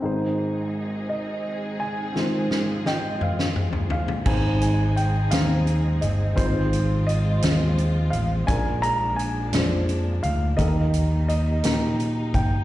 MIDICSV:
0, 0, Header, 1, 6, 480
1, 0, Start_track
1, 0, Key_signature, -4, "major"
1, 0, Tempo, 703400
1, 21, Time_signature, 6, 3, 24, 8
1, 8627, End_track
2, 0, Start_track
2, 0, Title_t, "Grand piano"
2, 0, Program_c, 0, 0
2, 746, Note_on_c, 0, 75, 61
2, 1227, Note_on_c, 0, 80, 67
2, 1241, Note_off_c, 0, 75, 0
2, 1954, Note_on_c, 0, 75, 59
2, 1958, Note_on_c, 0, 79, 62
2, 1970, Note_off_c, 0, 80, 0
2, 2200, Note_off_c, 0, 79, 0
2, 2202, Note_on_c, 0, 77, 52
2, 2645, Note_off_c, 0, 75, 0
2, 2661, Note_off_c, 0, 77, 0
2, 2672, Note_on_c, 0, 77, 58
2, 2908, Note_on_c, 0, 80, 69
2, 2918, Note_off_c, 0, 77, 0
2, 3144, Note_off_c, 0, 80, 0
2, 3155, Note_on_c, 0, 80, 56
2, 3387, Note_on_c, 0, 79, 60
2, 3400, Note_off_c, 0, 80, 0
2, 3623, Note_on_c, 0, 77, 69
2, 3636, Note_off_c, 0, 79, 0
2, 4103, Note_on_c, 0, 75, 59
2, 4122, Note_off_c, 0, 77, 0
2, 4344, Note_on_c, 0, 72, 66
2, 4354, Note_off_c, 0, 75, 0
2, 4822, Note_on_c, 0, 75, 72
2, 4842, Note_off_c, 0, 72, 0
2, 5530, Note_on_c, 0, 77, 67
2, 5568, Note_off_c, 0, 75, 0
2, 5586, Note_off_c, 0, 77, 0
2, 5780, Note_on_c, 0, 80, 77
2, 6019, Note_on_c, 0, 82, 76
2, 6032, Note_off_c, 0, 80, 0
2, 6247, Note_off_c, 0, 82, 0
2, 6252, Note_on_c, 0, 80, 67
2, 6980, Note_on_c, 0, 77, 72
2, 7001, Note_off_c, 0, 80, 0
2, 7211, Note_on_c, 0, 75, 69
2, 7231, Note_off_c, 0, 77, 0
2, 7691, Note_off_c, 0, 75, 0
2, 7701, Note_on_c, 0, 75, 68
2, 8155, Note_off_c, 0, 75, 0
2, 8423, Note_on_c, 0, 79, 62
2, 8627, Note_off_c, 0, 79, 0
2, 8627, End_track
3, 0, Start_track
3, 0, Title_t, "Upright piano"
3, 0, Program_c, 1, 0
3, 0, Note_on_c, 1, 60, 44
3, 11, Note_on_c, 1, 63, 46
3, 16, Note_on_c, 1, 44, 45
3, 18, Note_on_c, 1, 32, 45
3, 22, Note_on_c, 1, 68, 43
3, 38, Note_on_c, 1, 72, 49
3, 156, Control_c, 1, 64, 127
3, 1425, Note_off_c, 1, 60, 0
3, 1434, Note_off_c, 1, 63, 0
3, 1437, Note_off_c, 1, 44, 0
3, 1438, Note_off_c, 1, 32, 0
3, 1440, Note_off_c, 1, 68, 0
3, 1448, Note_off_c, 1, 72, 0
3, 1449, Note_on_c, 1, 60, 42
3, 1460, Note_on_c, 1, 65, 36
3, 1469, Note_on_c, 1, 32, 37
3, 1469, Note_on_c, 1, 44, 40
3, 1474, Control_c, 1, 64, 0
3, 1476, Note_on_c, 1, 68, 36
3, 1493, Note_on_c, 1, 72, 43
3, 1575, Control_c, 1, 64, 127
3, 2874, Note_off_c, 1, 60, 0
3, 2879, Note_off_c, 1, 65, 0
3, 2884, Note_off_c, 1, 32, 0
3, 2884, Note_off_c, 1, 44, 0
3, 2887, Note_off_c, 1, 68, 0
3, 2896, Note_off_c, 1, 72, 0
3, 2906, Note_on_c, 1, 60, 54
3, 2912, Note_on_c, 1, 63, 50
3, 2914, Note_on_c, 1, 44, 40
3, 2916, Note_on_c, 1, 68, 53
3, 2919, Control_c, 1, 64, 0
3, 2928, Note_on_c, 1, 72, 54
3, 3049, Control_c, 1, 64, 127
3, 3523, Note_off_c, 1, 60, 0
3, 3526, Note_off_c, 1, 63, 0
3, 3528, Note_off_c, 1, 68, 0
3, 3534, Note_off_c, 1, 72, 0
3, 3606, Note_off_c, 1, 44, 0
3, 3618, Note_on_c, 1, 60, 45
3, 3623, Note_on_c, 1, 63, 40
3, 3633, Note_on_c, 1, 68, 43
3, 3641, Note_on_c, 1, 72, 50
3, 4239, Note_off_c, 1, 60, 0
3, 4242, Note_off_c, 1, 63, 0
3, 4246, Note_off_c, 1, 68, 0
3, 4250, Note_off_c, 1, 72, 0
3, 4338, Note_on_c, 1, 60, 60
3, 4346, Note_on_c, 1, 65, 52
3, 4349, Note_on_c, 1, 44, 41
3, 4356, Note_on_c, 1, 68, 54
3, 4361, Control_c, 1, 64, 0
3, 4362, Note_on_c, 1, 71, 46
3, 4401, Note_off_c, 1, 71, 0
3, 4406, Note_on_c, 1, 72, 56
3, 4483, Control_c, 1, 64, 127
3, 4959, Note_off_c, 1, 60, 0
3, 4963, Note_off_c, 1, 65, 0
3, 4968, Note_off_c, 1, 68, 0
3, 4993, Note_off_c, 1, 72, 0
3, 5043, Note_off_c, 1, 44, 0
3, 5069, Note_on_c, 1, 60, 47
3, 5077, Note_on_c, 1, 65, 37
3, 5083, Note_on_c, 1, 68, 41
3, 5088, Note_on_c, 1, 75, 54
3, 5684, Note_off_c, 1, 60, 0
3, 5687, Note_off_c, 1, 65, 0
3, 5691, Note_off_c, 1, 68, 0
3, 5693, Note_off_c, 1, 75, 0
3, 5780, Note_on_c, 1, 62, 51
3, 5787, Note_on_c, 1, 65, 57
3, 5792, Note_on_c, 1, 46, 49
3, 5793, Note_on_c, 1, 68, 48
3, 5800, Control_c, 1, 64, 0
3, 5804, Note_on_c, 1, 70, 68
3, 5898, Control_c, 1, 64, 127
3, 6398, Note_off_c, 1, 62, 0
3, 6402, Note_off_c, 1, 65, 0
3, 6405, Note_off_c, 1, 68, 0
3, 6411, Note_off_c, 1, 70, 0
3, 6483, Note_off_c, 1, 46, 0
3, 6501, Note_on_c, 1, 62, 48
3, 6504, Note_on_c, 1, 65, 39
3, 6512, Note_on_c, 1, 68, 42
3, 6522, Note_on_c, 1, 72, 51
3, 7118, Note_off_c, 1, 62, 0
3, 7120, Note_off_c, 1, 65, 0
3, 7124, Note_off_c, 1, 68, 0
3, 7128, Note_off_c, 1, 72, 0
3, 7210, Note_on_c, 1, 58, 58
3, 7217, Note_on_c, 1, 63, 49
3, 7222, Note_on_c, 1, 51, 44
3, 7225, Note_on_c, 1, 67, 52
3, 7233, Note_on_c, 1, 69, 53
3, 7238, Control_c, 1, 64, 0
3, 7275, Note_off_c, 1, 69, 0
3, 7278, Note_on_c, 1, 70, 66
3, 7353, Control_c, 1, 64, 127
3, 7832, Note_off_c, 1, 58, 0
3, 7835, Note_off_c, 1, 63, 0
3, 7839, Note_off_c, 1, 67, 0
3, 7866, Note_off_c, 1, 70, 0
3, 7916, Note_off_c, 1, 51, 0
3, 7938, Note_on_c, 1, 58, 45
3, 7943, Note_on_c, 1, 63, 40
3, 7952, Note_on_c, 1, 66, 30
3, 7960, Note_on_c, 1, 70, 45
3, 7993, Note_on_c, 1, 67, 40
3, 7994, Note_off_c, 1, 66, 0
3, 8554, Note_off_c, 1, 58, 0
3, 8557, Note_off_c, 1, 63, 0
3, 8565, Note_off_c, 1, 70, 0
3, 8582, Note_off_c, 1, 67, 0
3, 8627, End_track
4, 0, Start_track
4, 0, Title_t, "String section"
4, 0, Program_c, 2, 48
4, 23, Note_on_c, 2, 56, 50
4, 23, Note_on_c, 2, 63, 40
4, 23, Note_on_c, 2, 68, 52
4, 25, Note_on_c, 2, 60, 39
4, 1453, Note_off_c, 2, 63, 0
4, 1465, Note_on_c, 2, 65, 42
4, 2883, Note_off_c, 2, 56, 0
4, 2884, Note_off_c, 2, 68, 0
4, 2885, Note_off_c, 2, 60, 0
4, 2895, Note_off_c, 2, 65, 0
4, 2905, Note_on_c, 2, 68, 54
4, 2908, Note_on_c, 2, 56, 55
4, 2908, Note_on_c, 2, 60, 44
4, 2908, Note_on_c, 2, 63, 49
4, 4334, Note_off_c, 2, 68, 0
4, 4336, Note_off_c, 2, 63, 0
4, 4349, Note_on_c, 2, 53, 55
4, 4351, Note_on_c, 2, 65, 59
4, 5762, Note_off_c, 2, 60, 0
4, 5776, Note_off_c, 2, 65, 0
4, 5792, Note_on_c, 2, 62, 57
4, 5798, Note_on_c, 2, 58, 47
4, 7199, Note_off_c, 2, 53, 0
4, 7200, Note_off_c, 2, 56, 0
4, 7215, Note_off_c, 2, 62, 0
4, 7228, Note_on_c, 2, 63, 60
4, 7234, Note_on_c, 2, 51, 54
4, 7237, Note_on_c, 2, 55, 47
4, 8627, Note_off_c, 2, 51, 0
4, 8627, Note_off_c, 2, 55, 0
4, 8627, Note_off_c, 2, 58, 0
4, 8627, Note_off_c, 2, 63, 0
4, 8627, End_track
5, 0, Start_track
5, 0, Title_t, "Fingered electric bass"
5, 0, Program_c, 3, 33
5, 2907, Note_on_c, 3, 32, 80
5, 3602, Note_off_c, 3, 32, 0
5, 3628, Note_on_c, 3, 39, 67
5, 4082, Note_off_c, 3, 39, 0
5, 4112, Note_on_c, 3, 31, 73
5, 4332, Note_off_c, 3, 31, 0
5, 4353, Note_on_c, 3, 32, 82
5, 5044, Note_off_c, 3, 32, 0
5, 5072, Note_on_c, 3, 39, 77
5, 5524, Note_off_c, 3, 39, 0
5, 5550, Note_on_c, 3, 33, 66
5, 5771, Note_off_c, 3, 33, 0
5, 5788, Note_on_c, 3, 34, 79
5, 6481, Note_off_c, 3, 34, 0
5, 6506, Note_on_c, 3, 41, 77
5, 6960, Note_off_c, 3, 41, 0
5, 6991, Note_on_c, 3, 38, 68
5, 7210, Note_off_c, 3, 38, 0
5, 7226, Note_on_c, 3, 39, 76
5, 7918, Note_off_c, 3, 39, 0
5, 7948, Note_on_c, 3, 46, 66
5, 8398, Note_off_c, 3, 46, 0
5, 8424, Note_on_c, 3, 31, 60
5, 8627, Note_off_c, 3, 31, 0
5, 8627, End_track
6, 0, Start_track
6, 0, Title_t, "Drums"
6, 1473, Note_on_c, 9, 38, 39
6, 1541, Note_off_c, 9, 38, 0
6, 1712, Note_on_c, 9, 38, 47
6, 1780, Note_off_c, 9, 38, 0
6, 1952, Note_on_c, 9, 38, 50
6, 2021, Note_off_c, 9, 38, 0
6, 2191, Note_on_c, 9, 45, 55
6, 2259, Note_off_c, 9, 45, 0
6, 2314, Note_on_c, 9, 38, 55
6, 2382, Note_off_c, 9, 38, 0
6, 2428, Note_on_c, 9, 45, 65
6, 2496, Note_off_c, 9, 45, 0
6, 2543, Note_on_c, 9, 43, 49
6, 2611, Note_off_c, 9, 43, 0
6, 2662, Note_on_c, 9, 43, 70
6, 2730, Note_off_c, 9, 43, 0
6, 2786, Note_on_c, 9, 43, 65
6, 2854, Note_off_c, 9, 43, 0
6, 2905, Note_on_c, 9, 49, 65
6, 2907, Note_on_c, 9, 36, 83
6, 2973, Note_off_c, 9, 49, 0
6, 2975, Note_off_c, 9, 36, 0
6, 3149, Note_on_c, 9, 42, 43
6, 3217, Note_off_c, 9, 42, 0
6, 3393, Note_on_c, 9, 42, 39
6, 3461, Note_off_c, 9, 42, 0
6, 3625, Note_on_c, 9, 42, 89
6, 3636, Note_on_c, 9, 38, 86
6, 3693, Note_off_c, 9, 42, 0
6, 3704, Note_off_c, 9, 38, 0
6, 3869, Note_on_c, 9, 42, 34
6, 3937, Note_off_c, 9, 42, 0
6, 4108, Note_on_c, 9, 42, 37
6, 4176, Note_off_c, 9, 42, 0
6, 4350, Note_on_c, 9, 42, 61
6, 4351, Note_on_c, 9, 36, 82
6, 4418, Note_off_c, 9, 42, 0
6, 4419, Note_off_c, 9, 36, 0
6, 4591, Note_on_c, 9, 42, 42
6, 4660, Note_off_c, 9, 42, 0
6, 4836, Note_on_c, 9, 42, 38
6, 4905, Note_off_c, 9, 42, 0
6, 5066, Note_on_c, 9, 42, 83
6, 5077, Note_on_c, 9, 38, 88
6, 5135, Note_off_c, 9, 42, 0
6, 5145, Note_off_c, 9, 38, 0
6, 5311, Note_on_c, 9, 42, 36
6, 5379, Note_off_c, 9, 42, 0
6, 5548, Note_on_c, 9, 42, 36
6, 5616, Note_off_c, 9, 42, 0
6, 5788, Note_on_c, 9, 42, 64
6, 5789, Note_on_c, 9, 36, 95
6, 5856, Note_off_c, 9, 42, 0
6, 5857, Note_off_c, 9, 36, 0
6, 6027, Note_on_c, 9, 42, 42
6, 6095, Note_off_c, 9, 42, 0
6, 6272, Note_on_c, 9, 42, 41
6, 6340, Note_off_c, 9, 42, 0
6, 6501, Note_on_c, 9, 42, 89
6, 6512, Note_on_c, 9, 38, 95
6, 6570, Note_off_c, 9, 42, 0
6, 6580, Note_off_c, 9, 38, 0
6, 6747, Note_on_c, 9, 42, 36
6, 6815, Note_off_c, 9, 42, 0
6, 6983, Note_on_c, 9, 42, 34
6, 7051, Note_off_c, 9, 42, 0
6, 7223, Note_on_c, 9, 42, 60
6, 7225, Note_on_c, 9, 36, 88
6, 7291, Note_off_c, 9, 42, 0
6, 7294, Note_off_c, 9, 36, 0
6, 7463, Note_on_c, 9, 42, 46
6, 7531, Note_off_c, 9, 42, 0
6, 7707, Note_on_c, 9, 42, 37
6, 7775, Note_off_c, 9, 42, 0
6, 7940, Note_on_c, 9, 42, 87
6, 7951, Note_on_c, 9, 38, 84
6, 8009, Note_off_c, 9, 42, 0
6, 8019, Note_off_c, 9, 38, 0
6, 8186, Note_on_c, 9, 42, 36
6, 8254, Note_off_c, 9, 42, 0
6, 8421, Note_on_c, 9, 42, 35
6, 8422, Note_on_c, 9, 36, 72
6, 8490, Note_off_c, 9, 36, 0
6, 8490, Note_off_c, 9, 42, 0
6, 8627, End_track
0, 0, End_of_file